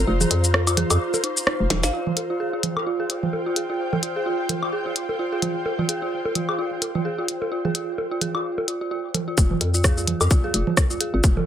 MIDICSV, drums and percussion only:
0, 0, Header, 1, 2, 480
1, 0, Start_track
1, 0, Key_signature, -4, "minor"
1, 0, Tempo, 465116
1, 77, Time_signature, 4, 2, 24, 8
1, 11829, End_track
2, 0, Start_track
2, 0, Title_t, "Drums"
2, 214, Note_on_c, 9, 64, 77
2, 215, Note_on_c, 9, 82, 43
2, 317, Note_off_c, 9, 64, 0
2, 318, Note_off_c, 9, 82, 0
2, 318, Note_on_c, 9, 42, 90
2, 421, Note_off_c, 9, 42, 0
2, 455, Note_on_c, 9, 82, 55
2, 558, Note_off_c, 9, 82, 0
2, 558, Note_on_c, 9, 37, 89
2, 558, Note_on_c, 9, 61, 42
2, 661, Note_off_c, 9, 37, 0
2, 661, Note_off_c, 9, 61, 0
2, 694, Note_on_c, 9, 76, 62
2, 695, Note_on_c, 9, 42, 35
2, 695, Note_on_c, 9, 82, 45
2, 797, Note_off_c, 9, 42, 0
2, 797, Note_off_c, 9, 76, 0
2, 797, Note_on_c, 9, 42, 84
2, 797, Note_on_c, 9, 64, 79
2, 798, Note_off_c, 9, 82, 0
2, 900, Note_off_c, 9, 64, 0
2, 901, Note_off_c, 9, 42, 0
2, 934, Note_on_c, 9, 42, 36
2, 934, Note_on_c, 9, 76, 66
2, 934, Note_on_c, 9, 82, 56
2, 1037, Note_off_c, 9, 42, 0
2, 1037, Note_off_c, 9, 76, 0
2, 1037, Note_off_c, 9, 82, 0
2, 1174, Note_on_c, 9, 61, 42
2, 1174, Note_on_c, 9, 82, 31
2, 1277, Note_off_c, 9, 61, 0
2, 1277, Note_off_c, 9, 82, 0
2, 1277, Note_on_c, 9, 42, 86
2, 1380, Note_off_c, 9, 42, 0
2, 1414, Note_on_c, 9, 82, 59
2, 1516, Note_on_c, 9, 37, 92
2, 1517, Note_off_c, 9, 82, 0
2, 1619, Note_off_c, 9, 37, 0
2, 1757, Note_on_c, 9, 38, 82
2, 1757, Note_on_c, 9, 42, 88
2, 1757, Note_on_c, 9, 61, 44
2, 1757, Note_on_c, 9, 64, 92
2, 1860, Note_off_c, 9, 38, 0
2, 1860, Note_off_c, 9, 42, 0
2, 1860, Note_off_c, 9, 61, 0
2, 1860, Note_off_c, 9, 64, 0
2, 1894, Note_on_c, 9, 38, 96
2, 1894, Note_on_c, 9, 82, 54
2, 1997, Note_off_c, 9, 38, 0
2, 1997, Note_off_c, 9, 82, 0
2, 2134, Note_on_c, 9, 64, 72
2, 2237, Note_on_c, 9, 42, 86
2, 2238, Note_off_c, 9, 64, 0
2, 2238, Note_on_c, 9, 61, 40
2, 2340, Note_off_c, 9, 42, 0
2, 2341, Note_off_c, 9, 61, 0
2, 2717, Note_on_c, 9, 42, 81
2, 2718, Note_on_c, 9, 64, 73
2, 2820, Note_off_c, 9, 42, 0
2, 2821, Note_off_c, 9, 64, 0
2, 2855, Note_on_c, 9, 61, 39
2, 2855, Note_on_c, 9, 76, 62
2, 2958, Note_off_c, 9, 61, 0
2, 2958, Note_off_c, 9, 76, 0
2, 3197, Note_on_c, 9, 42, 85
2, 3300, Note_off_c, 9, 42, 0
2, 3335, Note_on_c, 9, 64, 79
2, 3438, Note_off_c, 9, 64, 0
2, 3438, Note_on_c, 9, 61, 41
2, 3541, Note_off_c, 9, 61, 0
2, 3677, Note_on_c, 9, 42, 79
2, 3780, Note_off_c, 9, 42, 0
2, 4054, Note_on_c, 9, 61, 43
2, 4054, Note_on_c, 9, 64, 74
2, 4158, Note_off_c, 9, 61, 0
2, 4158, Note_off_c, 9, 64, 0
2, 4158, Note_on_c, 9, 42, 89
2, 4261, Note_off_c, 9, 42, 0
2, 4637, Note_on_c, 9, 42, 86
2, 4637, Note_on_c, 9, 61, 41
2, 4637, Note_on_c, 9, 64, 74
2, 4740, Note_off_c, 9, 42, 0
2, 4740, Note_off_c, 9, 61, 0
2, 4740, Note_off_c, 9, 64, 0
2, 4774, Note_on_c, 9, 76, 59
2, 4877, Note_off_c, 9, 76, 0
2, 5117, Note_on_c, 9, 42, 87
2, 5220, Note_off_c, 9, 42, 0
2, 5254, Note_on_c, 9, 61, 42
2, 5357, Note_off_c, 9, 61, 0
2, 5597, Note_on_c, 9, 42, 82
2, 5597, Note_on_c, 9, 64, 87
2, 5700, Note_off_c, 9, 42, 0
2, 5700, Note_off_c, 9, 64, 0
2, 5837, Note_on_c, 9, 61, 43
2, 5940, Note_off_c, 9, 61, 0
2, 5974, Note_on_c, 9, 64, 72
2, 6077, Note_off_c, 9, 64, 0
2, 6077, Note_on_c, 9, 42, 86
2, 6181, Note_off_c, 9, 42, 0
2, 6454, Note_on_c, 9, 61, 42
2, 6557, Note_off_c, 9, 61, 0
2, 6557, Note_on_c, 9, 42, 89
2, 6557, Note_on_c, 9, 64, 72
2, 6661, Note_off_c, 9, 42, 0
2, 6661, Note_off_c, 9, 64, 0
2, 6694, Note_on_c, 9, 76, 58
2, 6798, Note_off_c, 9, 76, 0
2, 7037, Note_on_c, 9, 42, 88
2, 7037, Note_on_c, 9, 61, 43
2, 7141, Note_off_c, 9, 42, 0
2, 7141, Note_off_c, 9, 61, 0
2, 7175, Note_on_c, 9, 64, 78
2, 7278, Note_off_c, 9, 64, 0
2, 7518, Note_on_c, 9, 42, 87
2, 7621, Note_off_c, 9, 42, 0
2, 7654, Note_on_c, 9, 61, 44
2, 7757, Note_off_c, 9, 61, 0
2, 7894, Note_on_c, 9, 64, 72
2, 7997, Note_off_c, 9, 64, 0
2, 7997, Note_on_c, 9, 42, 90
2, 8100, Note_off_c, 9, 42, 0
2, 8237, Note_on_c, 9, 61, 40
2, 8340, Note_off_c, 9, 61, 0
2, 8477, Note_on_c, 9, 64, 70
2, 8478, Note_on_c, 9, 42, 89
2, 8580, Note_off_c, 9, 64, 0
2, 8581, Note_off_c, 9, 42, 0
2, 8614, Note_on_c, 9, 76, 57
2, 8717, Note_off_c, 9, 76, 0
2, 8854, Note_on_c, 9, 61, 42
2, 8957, Note_off_c, 9, 61, 0
2, 8958, Note_on_c, 9, 42, 89
2, 9061, Note_off_c, 9, 42, 0
2, 9437, Note_on_c, 9, 61, 44
2, 9437, Note_on_c, 9, 64, 88
2, 9438, Note_on_c, 9, 42, 87
2, 9540, Note_off_c, 9, 61, 0
2, 9540, Note_off_c, 9, 64, 0
2, 9541, Note_off_c, 9, 42, 0
2, 9677, Note_on_c, 9, 36, 113
2, 9678, Note_on_c, 9, 82, 67
2, 9780, Note_off_c, 9, 36, 0
2, 9781, Note_off_c, 9, 82, 0
2, 9814, Note_on_c, 9, 64, 85
2, 9917, Note_off_c, 9, 64, 0
2, 9917, Note_on_c, 9, 42, 92
2, 9917, Note_on_c, 9, 61, 45
2, 10020, Note_off_c, 9, 42, 0
2, 10020, Note_off_c, 9, 61, 0
2, 10054, Note_on_c, 9, 82, 42
2, 10157, Note_off_c, 9, 82, 0
2, 10157, Note_on_c, 9, 36, 108
2, 10158, Note_on_c, 9, 37, 93
2, 10158, Note_on_c, 9, 82, 65
2, 10260, Note_off_c, 9, 36, 0
2, 10261, Note_off_c, 9, 37, 0
2, 10261, Note_off_c, 9, 82, 0
2, 10295, Note_on_c, 9, 82, 30
2, 10397, Note_on_c, 9, 64, 80
2, 10398, Note_off_c, 9, 82, 0
2, 10398, Note_on_c, 9, 42, 91
2, 10500, Note_off_c, 9, 64, 0
2, 10501, Note_off_c, 9, 42, 0
2, 10534, Note_on_c, 9, 61, 44
2, 10534, Note_on_c, 9, 76, 70
2, 10535, Note_on_c, 9, 82, 45
2, 10637, Note_off_c, 9, 61, 0
2, 10637, Note_off_c, 9, 76, 0
2, 10637, Note_off_c, 9, 82, 0
2, 10637, Note_on_c, 9, 36, 118
2, 10637, Note_on_c, 9, 82, 65
2, 10740, Note_off_c, 9, 36, 0
2, 10741, Note_off_c, 9, 82, 0
2, 10877, Note_on_c, 9, 42, 92
2, 10981, Note_off_c, 9, 42, 0
2, 11014, Note_on_c, 9, 64, 89
2, 11117, Note_off_c, 9, 64, 0
2, 11117, Note_on_c, 9, 36, 109
2, 11117, Note_on_c, 9, 37, 96
2, 11117, Note_on_c, 9, 61, 44
2, 11117, Note_on_c, 9, 82, 64
2, 11220, Note_off_c, 9, 36, 0
2, 11220, Note_off_c, 9, 61, 0
2, 11221, Note_off_c, 9, 37, 0
2, 11221, Note_off_c, 9, 82, 0
2, 11254, Note_on_c, 9, 82, 32
2, 11357, Note_off_c, 9, 82, 0
2, 11358, Note_on_c, 9, 42, 87
2, 11461, Note_off_c, 9, 42, 0
2, 11597, Note_on_c, 9, 36, 120
2, 11597, Note_on_c, 9, 82, 62
2, 11700, Note_off_c, 9, 36, 0
2, 11701, Note_off_c, 9, 82, 0
2, 11734, Note_on_c, 9, 61, 45
2, 11734, Note_on_c, 9, 64, 81
2, 11829, Note_off_c, 9, 61, 0
2, 11829, Note_off_c, 9, 64, 0
2, 11829, End_track
0, 0, End_of_file